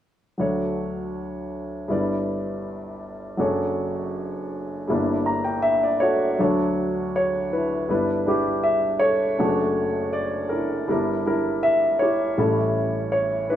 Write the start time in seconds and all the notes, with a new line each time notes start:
0.38 D2 D3 F#3 D4 A4 C#5
1.88 G1 G2 G3 E4 B4 D5
3.37 F#1 F#2 F#3 D4 A4 C#5
4.88 G1 G2 G3 A#3 D4 E4
5.26 A#5
5.44 G5
5.62 E5
5.83 D5
6.00 F#4 A4 C#5
6.39 D2 D3 F#3 D4 A4 C#5
7.16 C#5
7.53 D4 E4 B4
7.89 G1 G2 G3 D4 E4 B4
8.26 G3 D4 E4 G4
8.63 E5
8.99 A4 C#5
9.38 F#1 F#2 A3 D4 F#4 A4
10.13 D5
10.49 D4 E4 A#4
10.88 G1 G2 G3 D4 E4 A#4
11.26 G3 D4 E4 A#4
11.63 E5
11.99 E4 G4 C#5
12.37 A1 A2 G3 C#4 E4 A4
13.12 C#5
13.50 D4 E4 B4